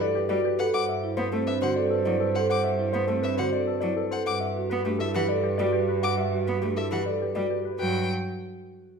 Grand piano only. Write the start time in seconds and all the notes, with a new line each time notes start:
0.01 D5
0.15 G4
0.29 D5
0.45 G4
0.59 B4
0.74 F#5
0.89 E5
1.17 C5
1.33 A4
1.47 B4
1.62 C5
1.76 D5
1.90 A4
2.05 D5
2.20 A4
2.35 C5
2.50 F#5
2.64 E5
2.93 C5
3.07 A4
3.22 B4
3.37 C5
3.52 D5
3.67 A4
3.80 D5
3.97 A4
4.11 C5
4.26 F#5
4.40 E5
4.70 B4
4.84 G4
4.99 A4
5.14 B4
5.29 D5
5.44 G4
5.58 D5
5.72 G4
5.88 B4
6.03 F#5
6.18 E5
6.47 B4
6.62 G4
6.77 A4
6.92 B4
7.06 D5
7.22 G4
7.36 D5
7.50 G4
7.65 B4
7.79 B4